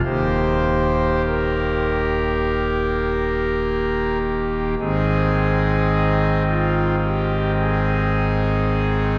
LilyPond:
<<
  \new Staff \with { instrumentName = "Pipe organ" } { \time 4/4 \key aes \major \tempo 4 = 53 c''4 bes'2~ bes'8 r8 | aes'4. f'8 g'8 aes'4. | }
  \new Staff \with { instrumentName = "Pipe organ" } { \clef bass \time 4/4 \key aes \major <ees,, ees, ees bes g'>1 | <aes,, aes, ees c' ees'>1 | }
>>